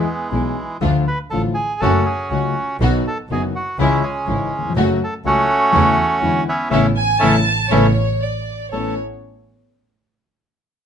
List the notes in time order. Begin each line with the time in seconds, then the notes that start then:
Already playing: E3 G#3 B3
0.32 B1 B2 E3 G#3 B3 E4 G#4
0.81 D2 D3 F3 A3 D4 F4
1.08 B4
1.30 A1 A2 D3 F3 A3 D4 F4 A4
1.54 G#4
1.80 F#1 F#2 C#3 F#3 A3 C#4 F#4 A4
2.06 G#4
2.30 C#2 C#3 F#3 A3 C#4 F#4
2.80 B1 B2 D#3 F#3 B3 D#4 F#4
3.07 A4
3.29 F#1 F#2 D#3 F#3 B3 D#4 F#4 G#4
3.55 F#4
3.78 C#2 C#3 E3 G#3 C#4 E4
4.03 G#4
4.27 G#1 G#2 C#3 E3 G#3 C#4 E4
4.58 D#2
4.65 E2
4.70 F2
4.75 F#1 F#2 C#3 F#3 A3 C#4 F#4
5.04 A4
5.24 C#2 C#3 F#3 A3 C#4 F#4
5.72 E2 C#3 E3 A3 C#4 E4
6.21 E2 D3 E3 G#3 B3 D4 E4
6.48 B3 C#4 E4
6.70 A1 C#3 E3 A3 B3 C#4 E4 A4
6.97 G#5
7.19 A1 C#3 E3 A3 B3 C#4 E4 A4 A5
7.70 A1 C#3 E3 A3 B3 C#4 E4 A4 C#5
8.21 D5
8.71 A1 A3 B3 C#4 A4 C#5